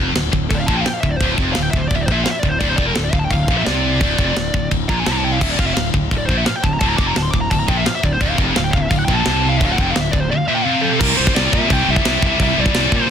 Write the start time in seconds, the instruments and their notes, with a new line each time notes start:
Already playing: fingered electric bass F1, distorted electric guitar F2
0.15 fingered electric bass D1, distorted electric guitar D2, snare, china
0.32 fingered electric bass D1, distorted electric guitar D2, kick
0.50 fingered electric bass D1, distorted electric guitar D2, lead electric guitar A4, kick, china
0.55 lead electric guitar D5
0.60 lead electric guitar F5
0.66 fingered electric bass A#1, distorted electric guitar A#2, lead electric guitar A5, kick
0.73 lead electric guitar G5
0.81 lead electric guitar F5
0.86 lead electric guitar G5, snare, china
0.93 lead electric guitar F5
1.01 fingered electric bass D1, distorted electric guitar D2, lead electric guitar E5, kick
1.09 lead electric guitar D5
1.16 lead electric guitar C5
1.20 fingered electric bass D1, distorted electric guitar D2, kick, china
1.38 fingered electric bass F1, distorted electric guitar F2, kick
1.53 lead electric guitar F5, snare, china
1.58 fingered electric bass D1, distorted electric guitar D2
1.62 lead electric guitar G5
1.71 fingered electric bass D1, lead electric guitar E5, kick
1.76 distorted electric guitar D2, lead electric guitar C5
1.88 fingered electric bass D1, lead electric guitar D5, kick, china
1.95 distorted electric guitar D2, lead electric guitar E5
2.01 lead electric guitar D5
2.06 fingered electric bass A#1, lead electric guitar C5, kick
2.11 distorted electric guitar A#2, lead electric guitar E5
2.24 lead electric guitar F5, snare, china
2.31 lead electric guitar E5
2.39 fingered electric bass D1, lead electric guitar D5, kick
2.45 distorted electric guitar D2, lead electric guitar C5
2.59 fingered electric bass D1, distorted electric guitar D2, lead electric guitar D5, kick, china
2.69 lead electric guitar C5
2.76 fingered electric bass F1, distorted electric guitar F2, lead electric guitar D5, kick
2.86 lead electric guitar A#4
2.94 fingered electric bass D1, distorted electric guitar D2, lead electric guitar A4, snare, china
3.04 lead electric guitar D5
3.12 fingered electric bass D1, distorted electric guitar D2, lead electric guitar F5, kick
3.19 lead electric guitar A5
3.24 lead electric guitar G5
3.30 fingered electric bass D1, distorted electric guitar D2, lead electric guitar F5, kick, china
3.48 fingered electric bass A#1, distorted electric guitar A#2, kick
3.57 lead electric guitar E5
3.66 fingered electric bass C2, distorted electric guitar C3, lead electric guitar D5, snare, china
4.01 fingered electric bass D1, distorted electric guitar D2, kick, china
4.19 fingered electric bass F1, distorted electric guitar F2, kick
4.36 fingered electric bass D1, distorted electric guitar D2, snare, china
4.54 fingered electric bass D1, distorted electric guitar D2, kick
4.71 fingered electric bass D1, distorted electric guitar D2, kick, china
4.89 fingered electric bass A#1, distorted electric guitar A#2, lead electric guitar A#5, kick
5.00 lead electric guitar G#5
5.06 fingered electric bass C2, distorted electric guitar C3, lead electric guitar A5, snare, china
5.11 lead electric guitar A#5
5.18 lead electric guitar A5
5.24 lead electric guitar G5
5.33 lead electric guitar F5
5.41 fingered electric bass D1, distorted electric guitar D2, lead electric guitar E5, kick, china, crash
5.50 lead electric guitar D5
5.58 fingered electric bass F1, distorted electric guitar F2, lead electric guitar F5, kick
5.66 lead electric guitar E5
5.74 fingered electric bass D1, distorted electric guitar D2, lead electric guitar F5, snare, china
5.94 fingered electric bass D1, distorted electric guitar D2, kick
6.11 fingered electric bass D1, distorted electric guitar D2, kick, china
6.18 lead electric guitar D5
6.26 fingered electric bass A#1, lead electric guitar C5, kick
6.30 distorted electric guitar A#2
6.37 lead electric guitar E5
6.45 lead electric guitar F5, snare, china
6.56 lead electric guitar G5
6.63 fingered electric bass D1, distorted electric guitar D2, lead electric guitar A5, kick
6.73 lead electric guitar A#5
6.79 fingered electric bass D1, distorted electric guitar D2, lead electric guitar A5, kick, china
6.89 lead electric guitar A#5
6.97 fingered electric bass F1, distorted electric guitar F2, lead electric guitar D6, kick
7.08 lead electric guitar A#5
7.16 fingered electric bass D1, distorted electric guitar D2, lead electric guitar A5, snare, china
7.22 lead electric guitar C6
7.31 fingered electric bass D1, distorted electric guitar D2, lead electric guitar D6, kick
7.41 lead electric guitar A#5
7.51 fingered electric bass D1, distorted electric guitar D2, lead electric guitar A5, kick, china
7.59 lead electric guitar A#5
7.68 fingered electric bass A#1, distorted electric guitar A#2, lead electric guitar G5, kick
7.77 lead electric guitar E5
7.86 lead electric guitar F5, snare, china
7.95 lead electric guitar E5
8.03 fingered electric bass D1, distorted electric guitar D2, lead electric guitar D5, kick
8.12 lead electric guitar C5
8.21 fingered electric bass D1, distorted electric guitar D2, lead electric guitar D5, kick, china
8.30 lead electric guitar F5
8.38 fingered electric bass F1, distorted electric guitar F2, kick
8.56 fingered electric bass D1, distorted electric guitar D2, lead electric guitar F5, snare, china
8.64 lead electric guitar G5
8.71 fingered electric bass D1, lead electric guitar F5, kick
8.77 distorted electric guitar D2
8.82 lead electric guitar E5
8.89 fingered electric bass D1, distorted electric guitar D2, lead electric guitar F5, kick, china
8.98 lead electric guitar F#5
9.05 fingered electric bass A#1, lead electric guitar G5, kick
9.09 distorted electric guitar A#2
9.14 lead electric guitar A5
9.20 lead electric guitar A5
9.25 fingered electric bass C2, distorted electric guitar C3, snare, china
9.49 lead electric guitar F5
9.57 fingered electric bass D1, lead electric guitar E5, kick, china
9.62 distorted electric guitar D2, lead electric guitar F5
9.72 lead electric guitar F#5
9.78 fingered electric bass F1, distorted electric guitar F2, lead electric guitar G5, kick
9.91 lead electric guitar F5
9.95 fingered electric bass D1, distorted electric guitar D2, snare, china
10.01 lead electric guitar E5
10.11 fingered electric bass D1, distorted electric guitar D2, lead electric guitar D5, kick
10.20 lead electric guitar C5
10.30 distorted electric guitar D2, lead electric guitar D5
10.37 lead electric guitar F5
10.48 distorted electric guitar A#2, lead electric guitar E5
10.55 lead electric guitar G5
10.64 distorted electric guitar C3, lead electric guitar F5
10.81 lead electric guitar A4
10.99 fingered electric bass C2, distorted electric guitar C3 G3, lead electric guitar A#4, kick, crash
11.09 distorted electric guitar C3 G3
11.17 fingered electric bass C2, distorted electric guitar C3 G3, lead electric guitar C5
11.25 distorted electric guitar C3 G3, kick
11.32 distorted electric guitar C3 G3, lead electric guitar D5
11.36 fingered electric bass C2, distorted electric guitar C3, snare, crash
11.40 distorted electric guitar G3
11.47 distorted electric guitar C3 G3
11.53 fingered electric bass A#2, distorted electric guitar C3 G3, lead electric guitar E5, kick
11.63 distorted electric guitar C3 G3
11.70 fingered electric bass C2, distorted electric guitar C3 G3, lead electric guitar G5, kick, crash
11.78 distorted electric guitar C3 G3
11.85 fingered electric bass C2, distorted electric guitar C3 G3
11.91 distorted electric guitar C3 G3, lead electric guitar E5
11.96 distorted electric guitar C3, kick
12.02 fingered electric bass C2, distorted electric guitar G3, snare, crash
12.07 distorted electric guitar C3 G3
12.16 distorted electric guitar C3 G3
12.22 fingered electric bass C2, distorted electric guitar C3 G3, kick
12.27 lead electric guitar E5
12.31 distorted electric guitar C3 G3
12.40 fingered electric bass C2, distorted electric guitar C3 G3, lead electric guitar E5, kick, crash
12.47 distorted electric guitar C3 G3
12.56 fingered electric bass C2, distorted electric guitar C3 G3, lead electric guitar D5
12.63 distorted electric guitar C3 G3, kick
12.70 distorted electric guitar C3 G3
12.74 fingered electric bass C2, distorted electric guitar G3, snare, crash
12.78 distorted electric guitar C3
12.86 distorted electric guitar C3 G3
12.92 fingered electric bass A#2, distorted electric guitar C3 G3, kick
12.96 lead electric guitar C5
13.01 distorted electric guitar C3 G3